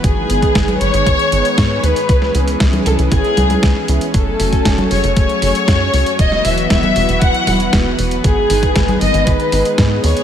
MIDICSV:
0, 0, Header, 1, 6, 480
1, 0, Start_track
1, 0, Tempo, 512821
1, 37, Time_signature, 4, 2, 24, 8
1, 9580, End_track
2, 0, Start_track
2, 0, Title_t, "Violin section"
2, 0, Program_c, 0, 48
2, 39, Note_on_c, 0, 68, 103
2, 720, Note_off_c, 0, 68, 0
2, 757, Note_on_c, 0, 73, 123
2, 1717, Note_off_c, 0, 73, 0
2, 1717, Note_on_c, 0, 71, 100
2, 2437, Note_off_c, 0, 71, 0
2, 2678, Note_on_c, 0, 69, 106
2, 2785, Note_off_c, 0, 69, 0
2, 2918, Note_on_c, 0, 68, 115
2, 3600, Note_off_c, 0, 68, 0
2, 3881, Note_on_c, 0, 69, 94
2, 4561, Note_off_c, 0, 69, 0
2, 4597, Note_on_c, 0, 73, 94
2, 4826, Note_off_c, 0, 73, 0
2, 4838, Note_on_c, 0, 73, 106
2, 5760, Note_off_c, 0, 73, 0
2, 5796, Note_on_c, 0, 75, 107
2, 6036, Note_off_c, 0, 75, 0
2, 6036, Note_on_c, 0, 76, 97
2, 6264, Note_off_c, 0, 76, 0
2, 6275, Note_on_c, 0, 76, 107
2, 6722, Note_off_c, 0, 76, 0
2, 6754, Note_on_c, 0, 78, 112
2, 7235, Note_off_c, 0, 78, 0
2, 7719, Note_on_c, 0, 68, 98
2, 8400, Note_off_c, 0, 68, 0
2, 8441, Note_on_c, 0, 75, 111
2, 8679, Note_off_c, 0, 75, 0
2, 8680, Note_on_c, 0, 71, 99
2, 9158, Note_off_c, 0, 71, 0
2, 9396, Note_on_c, 0, 73, 127
2, 9580, Note_off_c, 0, 73, 0
2, 9580, End_track
3, 0, Start_track
3, 0, Title_t, "Analog polysynth"
3, 0, Program_c, 1, 90
3, 276, Note_on_c, 1, 59, 88
3, 276, Note_on_c, 1, 63, 81
3, 276, Note_on_c, 1, 68, 80
3, 277, Note_on_c, 1, 71, 101
3, 727, Note_off_c, 1, 63, 0
3, 728, Note_off_c, 1, 59, 0
3, 728, Note_off_c, 1, 68, 0
3, 728, Note_off_c, 1, 71, 0
3, 756, Note_on_c, 1, 63, 70
3, 757, Note_on_c, 1, 59, 79
3, 757, Note_on_c, 1, 68, 72
3, 757, Note_on_c, 1, 71, 89
3, 1208, Note_off_c, 1, 59, 0
3, 1208, Note_off_c, 1, 63, 0
3, 1208, Note_off_c, 1, 68, 0
3, 1208, Note_off_c, 1, 71, 0
3, 1237, Note_on_c, 1, 59, 96
3, 1237, Note_on_c, 1, 63, 90
3, 1237, Note_on_c, 1, 68, 88
3, 1237, Note_on_c, 1, 71, 104
3, 1688, Note_off_c, 1, 59, 0
3, 1688, Note_off_c, 1, 63, 0
3, 1688, Note_off_c, 1, 68, 0
3, 1688, Note_off_c, 1, 71, 0
3, 1717, Note_on_c, 1, 63, 67
3, 1718, Note_on_c, 1, 59, 75
3, 1718, Note_on_c, 1, 68, 68
3, 1718, Note_on_c, 1, 71, 82
3, 1882, Note_off_c, 1, 59, 0
3, 1882, Note_off_c, 1, 63, 0
3, 1882, Note_off_c, 1, 68, 0
3, 1882, Note_off_c, 1, 71, 0
3, 2197, Note_on_c, 1, 61, 92
3, 2197, Note_on_c, 1, 64, 83
3, 2197, Note_on_c, 1, 68, 80
3, 2197, Note_on_c, 1, 71, 100
3, 2648, Note_off_c, 1, 61, 0
3, 2648, Note_off_c, 1, 64, 0
3, 2648, Note_off_c, 1, 68, 0
3, 2648, Note_off_c, 1, 71, 0
3, 2677, Note_on_c, 1, 61, 78
3, 2677, Note_on_c, 1, 64, 74
3, 2677, Note_on_c, 1, 68, 71
3, 2677, Note_on_c, 1, 71, 86
3, 3128, Note_off_c, 1, 61, 0
3, 3128, Note_off_c, 1, 64, 0
3, 3128, Note_off_c, 1, 68, 0
3, 3128, Note_off_c, 1, 71, 0
3, 3156, Note_on_c, 1, 64, 68
3, 3157, Note_on_c, 1, 61, 74
3, 3157, Note_on_c, 1, 68, 67
3, 3157, Note_on_c, 1, 71, 81
3, 3258, Note_off_c, 1, 61, 0
3, 3258, Note_off_c, 1, 64, 0
3, 3259, Note_off_c, 1, 68, 0
3, 3259, Note_off_c, 1, 71, 0
3, 3277, Note_on_c, 1, 61, 81
3, 3277, Note_on_c, 1, 64, 76
3, 3277, Note_on_c, 1, 68, 75
3, 3277, Note_on_c, 1, 71, 91
3, 3441, Note_off_c, 1, 64, 0
3, 3442, Note_off_c, 1, 61, 0
3, 3442, Note_off_c, 1, 68, 0
3, 3442, Note_off_c, 1, 71, 0
3, 3638, Note_on_c, 1, 61, 81
3, 3638, Note_on_c, 1, 64, 74
3, 3638, Note_on_c, 1, 68, 72
3, 3638, Note_on_c, 1, 71, 89
3, 3802, Note_off_c, 1, 61, 0
3, 3802, Note_off_c, 1, 64, 0
3, 3802, Note_off_c, 1, 68, 0
3, 3802, Note_off_c, 1, 71, 0
3, 4117, Note_on_c, 1, 57, 91
3, 4117, Note_on_c, 1, 61, 82
3, 4117, Note_on_c, 1, 66, 80
3, 4117, Note_on_c, 1, 80, 99
3, 4568, Note_off_c, 1, 57, 0
3, 4568, Note_off_c, 1, 61, 0
3, 4568, Note_off_c, 1, 66, 0
3, 4568, Note_off_c, 1, 80, 0
3, 4597, Note_on_c, 1, 57, 80
3, 4597, Note_on_c, 1, 61, 72
3, 4597, Note_on_c, 1, 66, 71
3, 4597, Note_on_c, 1, 68, 88
3, 5048, Note_off_c, 1, 57, 0
3, 5048, Note_off_c, 1, 61, 0
3, 5048, Note_off_c, 1, 66, 0
3, 5048, Note_off_c, 1, 68, 0
3, 5076, Note_on_c, 1, 57, 97
3, 5076, Note_on_c, 1, 61, 86
3, 5076, Note_on_c, 1, 66, 87
3, 5076, Note_on_c, 1, 68, 104
3, 5527, Note_off_c, 1, 66, 0
3, 5528, Note_off_c, 1, 57, 0
3, 5528, Note_off_c, 1, 61, 0
3, 5528, Note_off_c, 1, 68, 0
3, 5555, Note_on_c, 1, 66, 69
3, 5555, Note_on_c, 1, 68, 82
3, 5556, Note_on_c, 1, 57, 75
3, 5556, Note_on_c, 1, 61, 69
3, 5721, Note_off_c, 1, 57, 0
3, 5721, Note_off_c, 1, 61, 0
3, 5721, Note_off_c, 1, 66, 0
3, 5721, Note_off_c, 1, 68, 0
3, 6036, Note_on_c, 1, 59, 90
3, 6036, Note_on_c, 1, 66, 82
3, 6037, Note_on_c, 1, 64, 83
3, 6037, Note_on_c, 1, 71, 96
3, 6487, Note_off_c, 1, 59, 0
3, 6488, Note_off_c, 1, 64, 0
3, 6488, Note_off_c, 1, 66, 0
3, 6488, Note_off_c, 1, 71, 0
3, 6516, Note_on_c, 1, 64, 72
3, 6516, Note_on_c, 1, 71, 87
3, 6517, Note_on_c, 1, 59, 79
3, 6517, Note_on_c, 1, 66, 72
3, 6967, Note_off_c, 1, 71, 0
3, 6968, Note_off_c, 1, 59, 0
3, 6968, Note_off_c, 1, 64, 0
3, 6968, Note_off_c, 1, 66, 0
3, 6996, Note_on_c, 1, 59, 93
3, 6996, Note_on_c, 1, 66, 87
3, 6996, Note_on_c, 1, 71, 106
3, 6997, Note_on_c, 1, 64, 88
3, 7447, Note_off_c, 1, 59, 0
3, 7447, Note_off_c, 1, 66, 0
3, 7447, Note_off_c, 1, 71, 0
3, 7448, Note_off_c, 1, 64, 0
3, 7476, Note_on_c, 1, 59, 74
3, 7476, Note_on_c, 1, 64, 68
3, 7476, Note_on_c, 1, 66, 69
3, 7476, Note_on_c, 1, 71, 84
3, 7641, Note_off_c, 1, 59, 0
3, 7641, Note_off_c, 1, 64, 0
3, 7641, Note_off_c, 1, 66, 0
3, 7641, Note_off_c, 1, 71, 0
3, 7957, Note_on_c, 1, 59, 90
3, 7957, Note_on_c, 1, 63, 82
3, 7957, Note_on_c, 1, 68, 83
3, 7958, Note_on_c, 1, 71, 100
3, 8408, Note_off_c, 1, 59, 0
3, 8408, Note_off_c, 1, 63, 0
3, 8408, Note_off_c, 1, 68, 0
3, 8408, Note_off_c, 1, 71, 0
3, 8437, Note_on_c, 1, 59, 77
3, 8437, Note_on_c, 1, 63, 73
3, 8437, Note_on_c, 1, 68, 73
3, 8437, Note_on_c, 1, 71, 87
3, 8888, Note_off_c, 1, 59, 0
3, 8888, Note_off_c, 1, 63, 0
3, 8888, Note_off_c, 1, 68, 0
3, 8888, Note_off_c, 1, 71, 0
3, 8915, Note_on_c, 1, 59, 95
3, 8915, Note_on_c, 1, 68, 89
3, 8916, Note_on_c, 1, 63, 89
3, 8916, Note_on_c, 1, 71, 104
3, 9367, Note_off_c, 1, 59, 0
3, 9367, Note_off_c, 1, 63, 0
3, 9367, Note_off_c, 1, 68, 0
3, 9367, Note_off_c, 1, 71, 0
3, 9395, Note_on_c, 1, 59, 74
3, 9395, Note_on_c, 1, 68, 70
3, 9395, Note_on_c, 1, 71, 81
3, 9396, Note_on_c, 1, 63, 70
3, 9560, Note_off_c, 1, 59, 0
3, 9560, Note_off_c, 1, 68, 0
3, 9560, Note_off_c, 1, 71, 0
3, 9561, Note_off_c, 1, 63, 0
3, 9580, End_track
4, 0, Start_track
4, 0, Title_t, "Analog synth pad"
4, 0, Program_c, 2, 89
4, 0, Note_on_c, 2, 59, 76
4, 0, Note_on_c, 2, 71, 91
4, 37, Note_on_c, 2, 51, 84
4, 37, Note_on_c, 2, 56, 78
4, 37, Note_on_c, 2, 68, 77
4, 1920, Note_off_c, 2, 71, 0
4, 1937, Note_off_c, 2, 51, 0
4, 1957, Note_on_c, 2, 52, 84
4, 1957, Note_on_c, 2, 61, 77
4, 3839, Note_off_c, 2, 56, 0
4, 3839, Note_off_c, 2, 68, 0
4, 3840, Note_off_c, 2, 59, 0
4, 3857, Note_off_c, 2, 52, 0
4, 3876, Note_on_c, 2, 54, 85
4, 3876, Note_on_c, 2, 57, 77
4, 3876, Note_on_c, 2, 80, 76
4, 5759, Note_off_c, 2, 61, 0
4, 5777, Note_off_c, 2, 57, 0
4, 5777, Note_off_c, 2, 80, 0
4, 5797, Note_on_c, 2, 52, 83
4, 5797, Note_on_c, 2, 71, 96
4, 5798, Note_on_c, 2, 59, 75
4, 5798, Note_on_c, 2, 66, 77
4, 7679, Note_off_c, 2, 54, 0
4, 7697, Note_off_c, 2, 52, 0
4, 7698, Note_off_c, 2, 66, 0
4, 7716, Note_on_c, 2, 51, 84
4, 7716, Note_on_c, 2, 68, 78
4, 7717, Note_on_c, 2, 56, 77
4, 9580, Note_off_c, 2, 51, 0
4, 9580, Note_off_c, 2, 56, 0
4, 9580, Note_off_c, 2, 59, 0
4, 9580, Note_off_c, 2, 68, 0
4, 9580, Note_off_c, 2, 71, 0
4, 9580, End_track
5, 0, Start_track
5, 0, Title_t, "Analog synth bass"
5, 0, Program_c, 3, 38
5, 38, Note_on_c, 3, 32, 97
5, 239, Note_off_c, 3, 32, 0
5, 277, Note_on_c, 3, 32, 83
5, 479, Note_off_c, 3, 32, 0
5, 518, Note_on_c, 3, 32, 104
5, 719, Note_off_c, 3, 32, 0
5, 756, Note_on_c, 3, 32, 94
5, 857, Note_off_c, 3, 32, 0
5, 876, Note_on_c, 3, 32, 104
5, 977, Note_off_c, 3, 32, 0
5, 997, Note_on_c, 3, 32, 81
5, 1098, Note_off_c, 3, 32, 0
5, 1237, Note_on_c, 3, 32, 103
5, 1338, Note_off_c, 3, 32, 0
5, 1477, Note_on_c, 3, 44, 98
5, 1679, Note_off_c, 3, 44, 0
5, 1716, Note_on_c, 3, 39, 96
5, 1817, Note_off_c, 3, 39, 0
5, 1957, Note_on_c, 3, 37, 100
5, 2159, Note_off_c, 3, 37, 0
5, 2196, Note_on_c, 3, 37, 95
5, 2398, Note_off_c, 3, 37, 0
5, 2437, Note_on_c, 3, 37, 106
5, 2639, Note_off_c, 3, 37, 0
5, 2678, Note_on_c, 3, 37, 98
5, 2778, Note_off_c, 3, 37, 0
5, 2798, Note_on_c, 3, 37, 97
5, 2898, Note_off_c, 3, 37, 0
5, 2918, Note_on_c, 3, 32, 98
5, 3018, Note_off_c, 3, 32, 0
5, 3157, Note_on_c, 3, 37, 98
5, 3359, Note_off_c, 3, 37, 0
5, 3397, Note_on_c, 3, 37, 88
5, 3498, Note_off_c, 3, 37, 0
5, 3637, Note_on_c, 3, 37, 103
5, 3738, Note_off_c, 3, 37, 0
5, 3876, Note_on_c, 3, 30, 97
5, 4078, Note_off_c, 3, 30, 0
5, 4116, Note_on_c, 3, 30, 86
5, 4318, Note_off_c, 3, 30, 0
5, 4356, Note_on_c, 3, 30, 101
5, 4558, Note_off_c, 3, 30, 0
5, 4597, Note_on_c, 3, 30, 92
5, 4697, Note_off_c, 3, 30, 0
5, 4716, Note_on_c, 3, 30, 106
5, 4817, Note_off_c, 3, 30, 0
5, 4836, Note_on_c, 3, 30, 78
5, 4937, Note_off_c, 3, 30, 0
5, 5076, Note_on_c, 3, 30, 104
5, 5177, Note_off_c, 3, 30, 0
5, 5316, Note_on_c, 3, 42, 102
5, 5518, Note_off_c, 3, 42, 0
5, 5556, Note_on_c, 3, 37, 96
5, 5657, Note_off_c, 3, 37, 0
5, 5796, Note_on_c, 3, 28, 102
5, 5998, Note_off_c, 3, 28, 0
5, 6035, Note_on_c, 3, 28, 92
5, 6238, Note_off_c, 3, 28, 0
5, 6276, Note_on_c, 3, 28, 107
5, 6478, Note_off_c, 3, 28, 0
5, 6515, Note_on_c, 3, 28, 100
5, 6616, Note_off_c, 3, 28, 0
5, 6634, Note_on_c, 3, 28, 96
5, 6736, Note_off_c, 3, 28, 0
5, 6756, Note_on_c, 3, 28, 90
5, 6857, Note_off_c, 3, 28, 0
5, 6994, Note_on_c, 3, 28, 96
5, 7197, Note_off_c, 3, 28, 0
5, 7236, Note_on_c, 3, 28, 103
5, 7438, Note_off_c, 3, 28, 0
5, 7475, Note_on_c, 3, 28, 99
5, 7678, Note_off_c, 3, 28, 0
5, 7717, Note_on_c, 3, 32, 97
5, 7918, Note_off_c, 3, 32, 0
5, 7956, Note_on_c, 3, 32, 84
5, 8158, Note_off_c, 3, 32, 0
5, 8197, Note_on_c, 3, 32, 104
5, 8398, Note_off_c, 3, 32, 0
5, 8437, Note_on_c, 3, 32, 92
5, 8537, Note_off_c, 3, 32, 0
5, 8556, Note_on_c, 3, 32, 105
5, 8657, Note_off_c, 3, 32, 0
5, 8676, Note_on_c, 3, 32, 82
5, 8777, Note_off_c, 3, 32, 0
5, 8915, Note_on_c, 3, 32, 104
5, 9017, Note_off_c, 3, 32, 0
5, 9157, Note_on_c, 3, 44, 99
5, 9358, Note_off_c, 3, 44, 0
5, 9396, Note_on_c, 3, 39, 94
5, 9497, Note_off_c, 3, 39, 0
5, 9580, End_track
6, 0, Start_track
6, 0, Title_t, "Drums"
6, 38, Note_on_c, 9, 36, 122
6, 38, Note_on_c, 9, 42, 82
6, 132, Note_off_c, 9, 36, 0
6, 132, Note_off_c, 9, 42, 0
6, 278, Note_on_c, 9, 42, 80
6, 372, Note_off_c, 9, 42, 0
6, 397, Note_on_c, 9, 36, 65
6, 398, Note_on_c, 9, 42, 51
6, 491, Note_off_c, 9, 36, 0
6, 492, Note_off_c, 9, 42, 0
6, 518, Note_on_c, 9, 36, 119
6, 519, Note_on_c, 9, 38, 127
6, 519, Note_on_c, 9, 42, 82
6, 611, Note_off_c, 9, 36, 0
6, 613, Note_off_c, 9, 38, 0
6, 613, Note_off_c, 9, 42, 0
6, 638, Note_on_c, 9, 42, 37
6, 638, Note_on_c, 9, 63, 75
6, 731, Note_off_c, 9, 42, 0
6, 731, Note_off_c, 9, 63, 0
6, 757, Note_on_c, 9, 42, 79
6, 851, Note_off_c, 9, 42, 0
6, 878, Note_on_c, 9, 42, 52
6, 972, Note_off_c, 9, 42, 0
6, 997, Note_on_c, 9, 36, 118
6, 997, Note_on_c, 9, 42, 79
6, 1091, Note_off_c, 9, 36, 0
6, 1091, Note_off_c, 9, 42, 0
6, 1118, Note_on_c, 9, 42, 38
6, 1212, Note_off_c, 9, 42, 0
6, 1238, Note_on_c, 9, 42, 83
6, 1332, Note_off_c, 9, 42, 0
6, 1357, Note_on_c, 9, 42, 55
6, 1451, Note_off_c, 9, 42, 0
6, 1477, Note_on_c, 9, 36, 118
6, 1478, Note_on_c, 9, 38, 119
6, 1478, Note_on_c, 9, 42, 78
6, 1571, Note_off_c, 9, 36, 0
6, 1572, Note_off_c, 9, 38, 0
6, 1572, Note_off_c, 9, 42, 0
6, 1718, Note_on_c, 9, 42, 80
6, 1812, Note_off_c, 9, 42, 0
6, 1837, Note_on_c, 9, 42, 54
6, 1931, Note_off_c, 9, 42, 0
6, 1956, Note_on_c, 9, 42, 80
6, 1957, Note_on_c, 9, 36, 118
6, 2050, Note_off_c, 9, 42, 0
6, 2051, Note_off_c, 9, 36, 0
6, 2076, Note_on_c, 9, 38, 38
6, 2170, Note_off_c, 9, 38, 0
6, 2196, Note_on_c, 9, 42, 76
6, 2290, Note_off_c, 9, 42, 0
6, 2317, Note_on_c, 9, 42, 52
6, 2411, Note_off_c, 9, 42, 0
6, 2436, Note_on_c, 9, 38, 124
6, 2436, Note_on_c, 9, 42, 80
6, 2437, Note_on_c, 9, 36, 115
6, 2529, Note_off_c, 9, 38, 0
6, 2529, Note_off_c, 9, 42, 0
6, 2531, Note_off_c, 9, 36, 0
6, 2556, Note_on_c, 9, 42, 36
6, 2556, Note_on_c, 9, 63, 77
6, 2650, Note_off_c, 9, 42, 0
6, 2650, Note_off_c, 9, 63, 0
6, 2677, Note_on_c, 9, 42, 79
6, 2771, Note_off_c, 9, 42, 0
6, 2797, Note_on_c, 9, 42, 52
6, 2890, Note_off_c, 9, 42, 0
6, 2916, Note_on_c, 9, 42, 77
6, 2917, Note_on_c, 9, 36, 121
6, 3010, Note_off_c, 9, 42, 0
6, 3011, Note_off_c, 9, 36, 0
6, 3037, Note_on_c, 9, 42, 36
6, 3130, Note_off_c, 9, 42, 0
6, 3156, Note_on_c, 9, 42, 81
6, 3156, Note_on_c, 9, 63, 84
6, 3249, Note_off_c, 9, 42, 0
6, 3249, Note_off_c, 9, 63, 0
6, 3276, Note_on_c, 9, 42, 52
6, 3276, Note_on_c, 9, 63, 63
6, 3369, Note_off_c, 9, 42, 0
6, 3369, Note_off_c, 9, 63, 0
6, 3396, Note_on_c, 9, 38, 116
6, 3396, Note_on_c, 9, 42, 75
6, 3397, Note_on_c, 9, 36, 118
6, 3489, Note_off_c, 9, 38, 0
6, 3489, Note_off_c, 9, 42, 0
6, 3491, Note_off_c, 9, 36, 0
6, 3635, Note_on_c, 9, 42, 76
6, 3728, Note_off_c, 9, 42, 0
6, 3756, Note_on_c, 9, 42, 53
6, 3849, Note_off_c, 9, 42, 0
6, 3876, Note_on_c, 9, 42, 75
6, 3877, Note_on_c, 9, 36, 115
6, 3969, Note_off_c, 9, 42, 0
6, 3970, Note_off_c, 9, 36, 0
6, 4115, Note_on_c, 9, 46, 102
6, 4209, Note_off_c, 9, 46, 0
6, 4236, Note_on_c, 9, 42, 49
6, 4237, Note_on_c, 9, 36, 60
6, 4330, Note_off_c, 9, 36, 0
6, 4330, Note_off_c, 9, 42, 0
6, 4356, Note_on_c, 9, 38, 122
6, 4356, Note_on_c, 9, 42, 77
6, 4357, Note_on_c, 9, 36, 115
6, 4450, Note_off_c, 9, 36, 0
6, 4450, Note_off_c, 9, 38, 0
6, 4450, Note_off_c, 9, 42, 0
6, 4477, Note_on_c, 9, 42, 34
6, 4477, Note_on_c, 9, 63, 79
6, 4570, Note_off_c, 9, 42, 0
6, 4570, Note_off_c, 9, 63, 0
6, 4595, Note_on_c, 9, 46, 86
6, 4689, Note_off_c, 9, 46, 0
6, 4715, Note_on_c, 9, 42, 52
6, 4808, Note_off_c, 9, 42, 0
6, 4835, Note_on_c, 9, 42, 75
6, 4836, Note_on_c, 9, 36, 113
6, 4928, Note_off_c, 9, 42, 0
6, 4930, Note_off_c, 9, 36, 0
6, 4956, Note_on_c, 9, 42, 35
6, 5049, Note_off_c, 9, 42, 0
6, 5075, Note_on_c, 9, 46, 101
6, 5169, Note_off_c, 9, 46, 0
6, 5196, Note_on_c, 9, 42, 51
6, 5290, Note_off_c, 9, 42, 0
6, 5316, Note_on_c, 9, 36, 114
6, 5316, Note_on_c, 9, 38, 113
6, 5316, Note_on_c, 9, 42, 73
6, 5409, Note_off_c, 9, 36, 0
6, 5409, Note_off_c, 9, 38, 0
6, 5409, Note_off_c, 9, 42, 0
6, 5556, Note_on_c, 9, 46, 86
6, 5650, Note_off_c, 9, 46, 0
6, 5676, Note_on_c, 9, 42, 51
6, 5770, Note_off_c, 9, 42, 0
6, 5795, Note_on_c, 9, 42, 76
6, 5796, Note_on_c, 9, 36, 114
6, 5888, Note_off_c, 9, 42, 0
6, 5889, Note_off_c, 9, 36, 0
6, 5916, Note_on_c, 9, 38, 35
6, 6009, Note_off_c, 9, 38, 0
6, 6035, Note_on_c, 9, 46, 101
6, 6129, Note_off_c, 9, 46, 0
6, 6155, Note_on_c, 9, 42, 50
6, 6249, Note_off_c, 9, 42, 0
6, 6274, Note_on_c, 9, 38, 116
6, 6274, Note_on_c, 9, 42, 78
6, 6276, Note_on_c, 9, 36, 109
6, 6368, Note_off_c, 9, 38, 0
6, 6368, Note_off_c, 9, 42, 0
6, 6369, Note_off_c, 9, 36, 0
6, 6395, Note_on_c, 9, 42, 35
6, 6395, Note_on_c, 9, 63, 82
6, 6489, Note_off_c, 9, 42, 0
6, 6489, Note_off_c, 9, 63, 0
6, 6514, Note_on_c, 9, 46, 93
6, 6607, Note_off_c, 9, 46, 0
6, 6634, Note_on_c, 9, 42, 52
6, 6728, Note_off_c, 9, 42, 0
6, 6754, Note_on_c, 9, 42, 74
6, 6756, Note_on_c, 9, 36, 111
6, 6847, Note_off_c, 9, 42, 0
6, 6849, Note_off_c, 9, 36, 0
6, 6875, Note_on_c, 9, 42, 35
6, 6968, Note_off_c, 9, 42, 0
6, 6994, Note_on_c, 9, 46, 105
6, 6994, Note_on_c, 9, 63, 83
6, 7088, Note_off_c, 9, 46, 0
6, 7088, Note_off_c, 9, 63, 0
6, 7113, Note_on_c, 9, 42, 51
6, 7207, Note_off_c, 9, 42, 0
6, 7234, Note_on_c, 9, 38, 112
6, 7234, Note_on_c, 9, 42, 74
6, 7236, Note_on_c, 9, 36, 113
6, 7328, Note_off_c, 9, 38, 0
6, 7328, Note_off_c, 9, 42, 0
6, 7330, Note_off_c, 9, 36, 0
6, 7475, Note_on_c, 9, 46, 89
6, 7569, Note_off_c, 9, 46, 0
6, 7594, Note_on_c, 9, 42, 51
6, 7688, Note_off_c, 9, 42, 0
6, 7715, Note_on_c, 9, 42, 79
6, 7716, Note_on_c, 9, 36, 113
6, 7809, Note_off_c, 9, 42, 0
6, 7810, Note_off_c, 9, 36, 0
6, 7955, Note_on_c, 9, 46, 109
6, 8049, Note_off_c, 9, 46, 0
6, 8075, Note_on_c, 9, 42, 51
6, 8076, Note_on_c, 9, 36, 58
6, 8169, Note_off_c, 9, 42, 0
6, 8170, Note_off_c, 9, 36, 0
6, 8195, Note_on_c, 9, 38, 115
6, 8195, Note_on_c, 9, 42, 78
6, 8196, Note_on_c, 9, 36, 112
6, 8289, Note_off_c, 9, 38, 0
6, 8289, Note_off_c, 9, 42, 0
6, 8290, Note_off_c, 9, 36, 0
6, 8316, Note_on_c, 9, 42, 35
6, 8316, Note_on_c, 9, 63, 78
6, 8410, Note_off_c, 9, 42, 0
6, 8410, Note_off_c, 9, 63, 0
6, 8436, Note_on_c, 9, 46, 95
6, 8529, Note_off_c, 9, 46, 0
6, 8556, Note_on_c, 9, 42, 52
6, 8649, Note_off_c, 9, 42, 0
6, 8675, Note_on_c, 9, 42, 76
6, 8676, Note_on_c, 9, 36, 111
6, 8769, Note_off_c, 9, 42, 0
6, 8770, Note_off_c, 9, 36, 0
6, 8795, Note_on_c, 9, 42, 36
6, 8889, Note_off_c, 9, 42, 0
6, 8914, Note_on_c, 9, 46, 112
6, 9008, Note_off_c, 9, 46, 0
6, 9036, Note_on_c, 9, 42, 52
6, 9129, Note_off_c, 9, 42, 0
6, 9155, Note_on_c, 9, 38, 108
6, 9155, Note_on_c, 9, 42, 74
6, 9156, Note_on_c, 9, 36, 109
6, 9248, Note_off_c, 9, 38, 0
6, 9248, Note_off_c, 9, 42, 0
6, 9250, Note_off_c, 9, 36, 0
6, 9395, Note_on_c, 9, 46, 93
6, 9489, Note_off_c, 9, 46, 0
6, 9515, Note_on_c, 9, 42, 52
6, 9580, Note_off_c, 9, 42, 0
6, 9580, End_track
0, 0, End_of_file